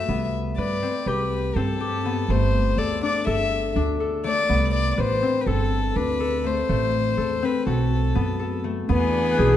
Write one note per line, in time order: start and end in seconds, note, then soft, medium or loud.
0.00 2.30 A3 medium
0.00 1.14 F#4 medium
0.00 1.79 A4 medium
0.00 0.30 E5 medium
0.08 0.53 C2 medium
0.08 0.89 B3 medium
0.58 0.80 G2 medium
0.58 0.89 B4 medium
0.58 1.08 D5 medium
0.83 1.56 C4 medium
1.06 1.50 C2 medium
1.06 1.80 G4 medium
1.06 1.58 B4 medium
1.56 2.22 G2 medium
1.56 2.11 C4 medium
1.56 2.31 A4 medium
1.81 4.16 G4 medium
2.05 4.49 B3 medium
2.29 2.73 G1 medium
2.29 4.24 A3 medium
2.29 2.80 C5 medium
2.77 2.99 D2 medium
2.77 3.26 A4 medium
2.77 3.02 D5 medium
3.03 3.76 D4 medium
3.03 3.26 D5 medium
3.27 3.71 G1 medium
3.27 4.00 A4 medium
3.27 3.78 E5 medium
3.76 4.42 D2 medium
3.76 5.95 D4 medium
4.00 5.47 A4 medium
4.24 6.44 A3 medium
4.24 4.71 D5 medium
4.49 4.93 C2 medium
4.49 5.29 B3 medium
4.74 4.91 D5 medium
4.91 5.01 D5 medium
4.98 5.20 A1 medium
4.98 5.29 B4 medium
4.98 5.42 C5 medium
5.23 7.42 C4 medium
5.41 5.49 B4 soft
5.46 5.91 G1 medium
5.46 6.20 A4 medium
5.46 5.98 A4 medium
5.96 6.62 D2 medium
5.96 8.76 D4 medium
5.96 6.48 B4 medium
6.20 7.17 A4 medium
6.44 6.69 A3 medium
6.44 7.46 C5 medium
6.69 7.13 A1 medium
6.69 8.64 A3 medium
7.18 7.40 E2 medium
7.18 8.39 A4 medium
7.43 8.21 C4 medium
7.43 7.68 B4 medium
7.67 8.11 B1 medium
7.67 9.57 F#4 medium
7.67 8.62 A4 medium
8.15 8.82 F#2 medium
8.15 8.88 B3 medium
8.40 9.44 A4 medium
8.64 9.44 A3 medium
8.89 9.33 E2 medium
8.89 9.57 E3 medium
8.89 9.57 B3 medium
8.89 9.57 D4 medium
8.89 9.57 G#4 medium
9.31 9.57 F#6 medium
9.38 9.57 B1 medium
9.38 9.57 G#4 medium